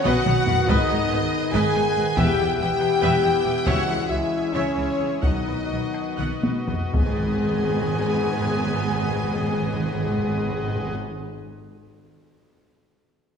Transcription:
Already playing: trombone section D#3 B3, pipe organ B3 F#4 B4 F#5
0.04 double bass section B1, cello section B2, french horn section F#4, viola section B4 D#5, violin section F#5, taiko mid
0.26 double bass section B1, cello section B2, viola section D#4 F#4, taiko mid
0.47 double bass section B1, cello section B2, viola section F#4 B4, taiko low
0.68 double bass section G#1, timpani G#2, cello section G#2, french horn section D#4, pipe organ G#4 D#5, viola section B4 D#5, violin section D#5, taiko
0.89 double bass section G#1, cello section G#2, viola section D#4 G#4
1.10 double bass section G#1, cello section G#2, viola section G#4 B4
1.53 double bass section G#1, cello section G#2, french horn section G#4, viola section B4 D#5, violin section G#5
1.74 double bass section G#1, cello section G#2, viola section D#4 G#4, taiko rim
1.96 double bass section G#1, cello section G#2, viola section G#4 B4
2.17 double bass section E1, cello section E2, trombone section E3 B3, pipe organ E4 E5, french horn section G4, viola section B4 E5, violin section G5, taiko
2.38 double bass section E1, cello section E2, viola section E4 G4
2.59 double bass section E1, cello section E2, french horn section G4, viola section G4 B4, violin section G5
2.81 taiko rim
3.02 double bass section E1, cello section E2, viola section B4 E5
3.23 double bass section E1, cello section E2, viola section E4 G4
3.45 double bass section E1, cello section E2, viola section G4 B4
3.66 double bass section C#2, cello section C#3, trombone section G#3, pipe organ C#4 G#4, french horn section F#4, viola section C#5 E5, violin section F#5, taiko
3.88 double bass section C#2, cello section C#3, viola section E4 G#4
4.09 double bass section C#2, cello section C#3, french horn section E4, viola section G#4 C#5, violin section E5
4.53 double bass section C#2, cello section C#3, french horn section C#4, violin section C#5, viola section C#5 E5
4.76 double bass section C#2, cello section C#3, viola section E4 G#4
4.99 double bass section C#2, cello section C#3, viola section G#4 C#5
5.21 double bass section B1, cello section B2, trombone section D#3 F#3, pipe organ B3 F#4 B4 D#5, french horn section D#4, violin section D#5, viola section F#5, taiko
5.46 double bass section B1, cello section B2, viola section B4
5.70 double bass section B1, cello section B2, viola section D#5
5.94 taiko rim
6.18 double bass section B1, cello section B2, viola section F#5, taiko mid
6.43 double bass section B1, cello section B2, viola section B4, taiko high
6.68 double bass section B1, cello section B2, viola section D#5, taiko low
6.92 double bass section G#1, timpani G#2, cello section G#2, trombone section D#3 B3, pipe organ B3 G#4 B4 D#5, viola section B3 G#4, french horn section G#4, violin section G#5, taiko
7.00 timpani G#2
7.06 timpani G#2
7.13 timpani G#2
7.20 timpani G#2
7.25 timpani G#2
7.32 timpani G#2
7.38 timpani G#2
7.44 timpani G#2
7.50 timpani G#2
7.57 timpani G#2
7.63 timpani G#2
7.69 timpani G#2
7.75 timpani G#2
7.82 timpani G#2
7.88 timpani G#2
7.95 timpani G#2
8.01 timpani G#2
8.07 timpani G#2
8.14 timpani G#2
8.20 timpani G#2
8.27 timpani G#2
8.33 timpani G#2
8.40 timpani G#2
8.46 timpani G#2
8.52 timpani G#2
8.59 timpani G#2
8.65 timpani G#2
8.71 timpani G#2
8.77 timpani G#2
8.84 timpani G#2
8.90 timpani G#2
8.96 timpani G#2
9.03 timpani G#2
9.09 timpani G#2
9.16 timpani G#2
9.22 timpani G#2
9.29 timpani G#2
9.35 timpani G#2
9.42 timpani G#2
9.48 timpani G#2
9.54 timpani G#2
9.60 timpani G#2
9.66 timpani G#2
9.73 timpani G#2
9.79 timpani G#2
9.86 timpani G#2
9.92 timpani G#2
9.99 timpani G#2
10.05 timpani G#2
10.11 timpani G#2
10.18 timpani G#2
10.24 timpani G#2
10.30 timpani G#2
10.37 timpani G#2
10.44 timpani G#2
10.51 timpani G#2
10.57 timpani G#2
10.63 timpani G#2
10.69 timpani G#2
10.76 timpani G#2
10.82 timpani G#2
10.88 timpani G#2

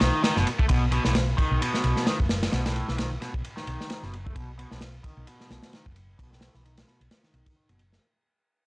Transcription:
Already playing: overdriven electric guitar D#3
0.01 fingered electric bass B1, snare, ride
0.24 overdriven electric guitar D#3, snare, ride
0.36 fingered electric bass F#1, overdriven electric guitar B2, snare
0.47 ride
0.59 overdriven electric guitar A3, kick
0.69 fingered electric bass B1, overdriven electric guitar B2, kick, ride
0.92 overdriven electric guitar B2, ride
1.05 fingered electric bass B1, overdriven electric guitar A2, snare
1.15 snare, ride
1.38 overdriven electric guitar D#3, kick, ride
1.51 fingered electric bass B1
1.61 overdriven electric guitar B2, ride
1.74 snare
1.84 fingered electric bass B1, ride
1.97 snare
2.07 overdriven electric guitar D#3, snare, ride
2.20 fingered electric bass F#1, kick
2.29 snare, ride
2.43 snare, ride
2.52 fingered electric bass B1, overdriven electric guitar B2, snare, ride
2.66 overdriven electric guitar A2, snare, ride
2.76 ride
2.88 fingered electric bass B1, overdriven electric guitar E3, snare
2.98 overdriven electric guitar D#3, snare, ride
3.21 overdriven electric guitar B2, snare, ride
3.34 fingered electric bass B1, kick
3.44 ride
3.57 overdriven electric guitar D#3, snare
3.67 fingered electric bass B1, ride
3.81 snare
3.90 overdriven electric guitar D#3, snare, ride
4.03 fingered electric bass F#1, overdriven electric guitar B2, snare
4.13 ride
4.26 overdriven electric guitar A3, kick
4.36 fingered electric bass B1, overdriven electric guitar B2, kick, ride
4.59 overdriven electric guitar B2, ride
4.71 fingered electric bass B1, overdriven electric guitar A2, snare
4.81 snare, ride
5.04 overdriven electric guitar D#3, kick, ride
5.17 fingered electric bass B1
5.27 overdriven electric guitar B2, ride
5.41 snare
5.50 fingered electric bass B1, snare, ride
5.63 snare, ride
5.73 overdriven electric guitar D#3, snare, ride
5.86 fingered electric bass F#1, kick
5.96 ride
6.19 fingered electric bass B1, overdriven electric guitar B2, kick, ride
6.32 overdriven electric guitar A2, snare
6.41 snare, ride
6.54 fingered electric bass B1, overdriven electric guitar E3, snare
6.65 overdriven electric guitar D#3, ride
6.77 snare, ride
6.88 overdriven electric guitar B2, snare
7.01 fingered electric bass B1, ride
7.11 snare, ride
7.23 overdriven electric guitar D#3, snare
7.34 fingered electric bass B1, ride
7.46 kick, ride
7.56 overdriven electric guitar D#3
7.69 fingered electric bass F#1, overdriven electric guitar B2, ride
7.79 ride
7.92 overdriven electric guitar A3, snare

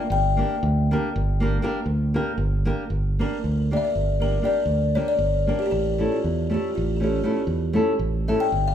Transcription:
Already playing: kalimba F5
0.10 fingered electric bass G1, kalimba G5
0.37 nylon-string guitar A#3 D4 G4 A#4
0.63 fingered electric bass D2
0.91 nylon-string guitar A#3 D4 G4 A#4
1.16 fingered electric bass G1
1.40 nylon-string guitar A#3 D4 G4 A#4
1.62 nylon-string guitar A#3 D4 G4 A#4
1.86 fingered electric bass D2
2.14 nylon-string guitar A#3 D4 G4 A#4
2.38 fingered electric bass G1
2.65 nylon-string guitar A#3 D4 G4 A#4
2.90 fingered electric bass G1
3.19 nylon-string guitar A#3 D4 G4 A#4, kalimba A#4
3.44 fingered electric bass D2
3.71 nylon-string guitar A#3 D4 G4 A#4, kalimba D5
3.77 kalimba E5
3.85 kalimba D5
3.95 fingered electric bass G1
4.20 nylon-string guitar A#3 D4 G4 A#4, kalimba A#4
4.42 nylon-string guitar A#3 D4 G4 A#4, kalimba D5
4.66 fingered electric bass D2
4.95 nylon-string guitar A#3 D4 G4 A#4, kalimba C#5
5.08 kalimba D5
5.18 fingered electric bass G1
5.47 nylon-string guitar A#3 D4 G4 A#4, kalimba A#4
5.59 kalimba G4 A4
5.66 kalimba G4
5.71 fingered electric bass A1, kalimba A4
5.98 nylon-string guitar A3 C#4 E4 A4
6.12 kalimba F4
6.24 fingered electric bass E2
6.50 nylon-string guitar A3 C#4 E4 A4
6.54 kalimba G4
6.71 kalimba G4
6.75 fingered electric bass A1, kalimba F4
6.96 nylon-string guitar A3, kalimba A4
7.01 nylon-string guitar C#4 E4 A4, kalimba G4
7.23 nylon-string guitar A3 C#4 E4 A4
7.47 fingered electric bass E2
7.73 nylon-string guitar A3 C#4 E4 A4
7.99 fingered electric bass A1
8.28 nylon-string guitar A3 C#4 E4 A4, kalimba E5
8.40 kalimba G5
8.52 fingered electric bass G1
8.68 kalimba F5

